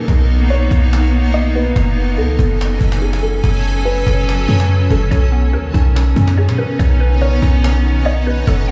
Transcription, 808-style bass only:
0.08 0.69 B1 loud
0.71 1.72 B1 loud
1.76 2.19 F#1 loud
2.18 2.38 C#2 loud
2.39 2.79 F#1 loud
2.81 3.41 F#1 loud
3.44 4.04 F#1 loud
4.07 4.47 F#1 loud
4.49 4.89 F#2 loud
4.91 5.11 F#1 loud
5.11 5.55 B1 loud
5.54 5.73 D#2 loud
5.74 6.15 B1 loud
6.16 6.50 F#2 loud
6.48 6.58 B2 medium
6.79 7.40 B1 loud
7.42 8.43 B1 loud
8.47 8.71 F#1 loud

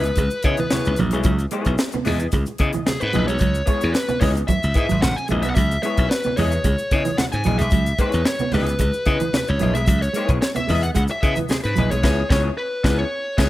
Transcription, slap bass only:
0.00 0.11 C#2 medium
0.18 0.28 C#2 medium
0.44 0.55 C#3 medium
0.87 0.96 C#2 medium
0.99 1.14 A#1 medium
1.14 1.23 B1 medium
1.25 1.45 C#2 loud
1.66 1.76 B1 loud
2.07 2.26 E2 medium
2.33 2.44 C#2 medium
2.60 2.70 C#3 medium
3.02 3.11 G#2 medium
3.15 3.29 A#1 medium
3.29 3.38 B1 medium
3.41 3.61 C#2 medium
3.83 3.92 E2 medium
4.22 4.42 C#2 loud
4.64 4.73 C#2 medium
4.76 4.86 G#2 medium
4.91 5.00 G#1 medium
5.04 5.14 G#1 medium
5.31 5.44 A#1 loud
5.44 5.53 B1 medium
5.57 5.76 C#2 loud
5.98 6.07 B1 medium
6.38 6.58 E2 medium
6.65 6.75 C#2 medium
6.92 7.02 C#3 loud
7.34 7.42 G#2 medium
7.46 7.56 A#1 loud
7.61 7.69 B1 medium
7.73 7.92 C#2 loud
8.14 8.23 E2 medium
8.54 8.73 C#2 medium
8.80 8.90 C#2 medium
9.07 9.17 C#3 medium
9.49 9.58 C#2 medium
9.62 9.76 A#1 loud
9.76 9.85 B1 medium
9.88 10.07 C#2 loud
10.29 10.38 B1 medium
10.70 10.89 E2 medium
10.96 11.06 C#2 medium
11.23 11.33 C#3 medium
11.65 11.74 G#2 medium
11.78 11.88 A#1 medium
11.92 12.01 B1 loud
12.04 12.22 C#2 loud
12.31 12.49 C#2 loud
12.84 13.03 C#2 loud
13.38 13.49 C#2 loud

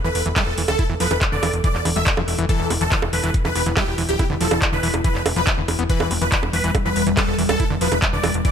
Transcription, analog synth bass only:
0.04 0.11 E1 medium
0.15 0.22 E1 loud
0.26 0.33 E1 loud
0.47 0.54 E1 medium
0.58 0.65 E1 medium
0.68 0.75 D1 loud
0.90 0.97 E1 medium
1.00 1.07 E1 loud
1.11 1.18 E1 medium
1.32 1.39 E1 medium
1.43 1.50 E1 loud
1.53 1.60 E1 medium
1.75 1.82 E1 medium
1.85 1.92 E1 loud
1.96 2.03 E1 loud
2.17 2.24 E1 medium
2.28 2.35 E1 loud
2.38 2.46 E1 loud
2.60 2.67 E1 medium
2.70 2.77 E1 loud
2.81 2.88 E1 medium
3.02 3.09 E1 medium
3.13 3.20 E1 loud
3.24 3.31 E1 medium
3.45 3.52 E1 medium
3.55 3.63 E1 loud
3.66 3.73 E1 loud
3.87 3.94 E1 medium
3.98 4.05 E1 loud
4.09 4.16 D1 medium
4.30 4.37 E1 medium
4.41 4.48 E1 loud
4.51 4.58 E1 medium
4.73 4.80 E1 medium
4.83 4.90 E1 loud
4.94 5.01 E1 medium
5.15 5.22 E1 medium
5.26 5.33 E1 loud
5.36 5.43 E1 medium
5.58 5.65 E1 medium
5.68 5.75 E1 loud
5.79 5.86 E1 medium
6.00 6.07 E1 medium
6.11 6.18 E1 loud
6.21 6.28 E1 medium
6.43 6.50 E1 medium
6.53 6.60 E1 medium
6.64 6.71 E1 medium
6.85 6.92 E1 medium
6.96 7.03 E1 loud
7.07 7.14 E1 loud
7.28 7.35 E1 medium
7.38 7.46 E1 loud
7.49 7.56 D1 medium
7.70 7.77 E1 medium
7.81 7.88 E1 loud
7.92 7.99 E1 medium
8.13 8.20 E1 medium
8.24 8.31 E1 loud
8.34 8.41 E1 medium

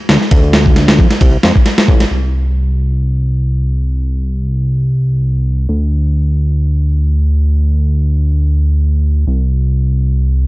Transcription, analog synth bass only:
0.09 0.18 D2 loud
0.31 1.00 D2 loud
0.99 1.07 F2 medium
1.21 1.37 C2 medium
1.44 1.52 F2 loud
1.88 2.05 A1 loud
2.11 5.67 C2 medium
5.69 9.25 D2 medium
9.27 10.47 C2 medium

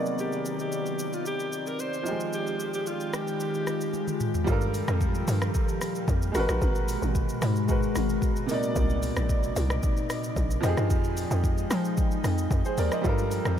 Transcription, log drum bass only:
4.47 4.83 G2 loud
4.88 5.23 F2 loud
5.28 5.51 G2 loud
6.08 6.32 F2 loud
6.35 6.47 G#1 loud
6.49 6.60 A#1 medium
6.62 6.98 G#1 loud
7.02 7.37 G#1 loud
7.42 7.89 G#2 loud
7.95 8.19 G#1 loud
8.76 9.12 C2 loud
9.17 9.52 A#1 medium
9.56 9.80 C2 loud
10.36 10.60 A#1 loud
10.63 10.76 F2 loud
10.77 10.92 G2 loud
10.90 11.26 F2 loud
11.31 11.66 F2 loud
11.70 12.18 F3 loud
12.24 12.48 F2 loud
12.51 12.63 F2 loud
12.78 12.90 D#2 medium
13.05 13.41 G2 loud
13.45 13.60 F2 medium

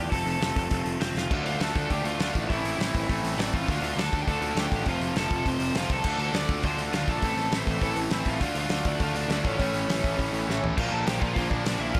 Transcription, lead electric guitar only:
0.11 0.97 A4 medium
0.11 1.03 A5 loud
1.01 1.15 C4 medium
1.01 1.16 C5 medium
1.17 1.44 F4 medium
1.17 1.44 F5 medium
1.47 1.61 F4 medium
1.47 1.61 F5 medium
1.61 1.88 A4 medium
1.61 1.89 A5 medium
1.90 2.05 G4 medium
1.90 2.06 G5 loud
2.04 2.33 F4 medium
2.04 2.32 F5 medium
2.50 3.05 E4 medium
2.50 3.05 E5 medium
3.39 3.53 D4 medium
3.39 3.54 D5 medium
3.54 3.82 F4 medium
3.54 3.83 F5 medium
3.84 3.97 F4 medium
3.84 3.99 F5 medium
3.99 4.19 A4 medium
3.99 4.22 A5 medium
4.22 4.28 G5 medium
4.28 4.55 A4 medium
4.28 4.58 A5 medium
4.59 4.85 G4 medium
4.59 4.89 G5 loud
4.87 5.14 F4 medium
4.87 5.18 F5 loud
5.17 5.44 A4 medium
5.17 5.47 A5 medium
5.48 5.74 C5 medium
5.48 5.78 C6 loud
5.76 5.89 F4 medium
5.76 5.91 F5 medium
5.92 6.18 A4 medium
5.92 6.20 A5 loud
6.20 6.34 A4 medium
6.20 6.34 A5 loud
6.36 6.63 D5 medium
6.36 6.65 D6 medium
6.65 6.78 C5 medium
6.65 6.78 C6 loud
6.94 7.07 F4 medium
6.94 7.09 F5 medium
7.08 7.36 A4 medium
7.08 7.38 A5 loud
7.38 7.51 A4 medium
7.38 7.55 A5 medium
7.53 7.80 C5 medium
7.53 7.84 C6 medium
7.83 7.96 A4 medium
7.83 7.97 A5 loud
8.13 8.26 C4 medium
8.13 8.28 C5 medium
8.27 8.54 F4 medium
8.27 8.58 F5 medium
8.58 8.84 F4 medium
8.58 8.85 F5 medium
8.87 9.00 D4 medium
8.87 9.02 D5 medium
9.01 9.15 F4 medium
9.01 9.17 F5 loud
9.15 9.29 D4 medium
9.15 9.30 D5 medium
9.30 9.35 D4 medium
9.30 9.37 D5 medium
9.45 10.59 C#4 medium
9.45 10.63 C#5 medium
10.78 10.92 F4 medium
10.78 10.93 F5 loud
10.92 11.06 A4 medium
10.92 11.06 A5 medium
11.06 11.21 G4 medium
11.06 11.22 G5 medium
11.19 11.35 F4 medium
11.19 11.33 F5 medium
11.35 11.50 F4 medium
11.35 11.50 F5 loud
11.50 11.79 D4 medium
11.50 11.80 D5 medium
11.80 11.95 E4 medium
11.80 11.94 E5 medium
11.94 12.00 F4 medium
11.94 12.00 F5 loud

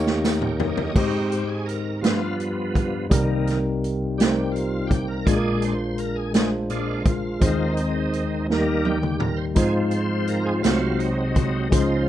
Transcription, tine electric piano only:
0.00 0.92 D#2 medium
0.00 0.92 D#3 medium
0.00 0.98 A#3 medium
0.00 0.95 D#4 medium
0.00 0.97 G4 medium
0.00 0.62 A#4 medium
0.00 0.98 C#5 medium
0.94 2.00 G#2 medium
0.94 1.68 G#3 medium
0.94 1.69 D#4 medium
0.94 1.70 G4 medium
0.94 1.70 C5 medium
2.02 3.07 G2 medium
2.02 2.76 G3 medium
2.02 2.76 D4 soft
2.02 2.77 F4 soft
2.02 2.77 B4 medium
3.10 5.23 C2 medium
3.10 5.23 C3 medium
3.10 3.84 G3 medium
3.10 3.84 C4 medium
3.10 3.85 D#4 medium
3.10 3.85 A#4 medium
4.18 4.92 G3 medium
4.18 4.92 C4 medium
4.18 4.93 D#4 medium
4.18 4.27 A#4 medium
4.28 4.97 C5 medium
5.26 7.38 A#1 medium
5.26 7.39 A#2 medium
5.26 6.00 G#3 medium
5.26 6.00 D4 medium
5.26 6.01 F4 medium
5.26 5.35 G#4 medium
5.37 6.05 A#4 medium
6.33 7.07 G#3 medium
6.33 7.08 D4 soft
6.33 7.08 F4 medium
6.33 7.09 C5 medium
7.40 8.46 D#2 medium
7.40 8.45 D#3 medium
7.40 8.14 G#3 medium
7.40 8.15 C4 medium
7.40 8.15 D#4 medium
7.40 8.16 C5 medium
8.48 9.53 D#2 soft
8.48 9.53 D#3 medium
8.48 9.22 G3 medium
8.48 9.22 A#3 soft
8.48 9.23 D#4 medium
8.48 9.24 A#4 medium
9.54 10.60 G#2 medium
9.54 10.29 G#3 medium
9.54 10.29 D#4 medium
9.54 10.30 F4 medium
9.54 10.31 C5 medium
10.63 11.68 C2 medium
10.63 11.68 C3 medium
10.63 11.37 G#3 medium
10.63 11.37 D#4 medium
10.63 11.38 F#4 soft
10.63 11.38 C5 medium
11.70 12.09 C#2 medium
11.70 12.09 C#3 medium
11.70 12.09 G#3 medium
11.70 12.09 C#4 medium
11.70 12.09 F4 medium
11.70 12.09 C5 medium

